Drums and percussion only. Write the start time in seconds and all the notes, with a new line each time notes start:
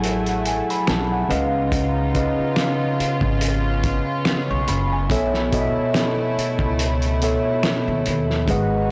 0.04 closed hi-hat
0.26 closed hi-hat
0.46 closed hi-hat
0.70 closed hi-hat
0.87 finger snap, snare, closed hi-hat
1.30 closed hi-hat
1.72 kick, closed hi-hat
2.15 kick, closed hi-hat
2.56 finger snap, snare, closed hi-hat
3.00 closed hi-hat
3.21 kick
3.41 closed hi-hat
3.84 kick, closed hi-hat
4.25 finger snap, snare, closed hi-hat
4.68 closed hi-hat
5.10 kick, closed hi-hat
5.34 snare
5.53 kick, closed hi-hat
5.94 finger snap, snare, closed hi-hat
6.39 closed hi-hat
6.59 kick
6.79 closed hi-hat
7.02 closed hi-hat
7.22 closed hi-hat
7.63 finger snap, snare, closed hi-hat
8.06 closed hi-hat
8.30 snare
8.48 kick, closed hi-hat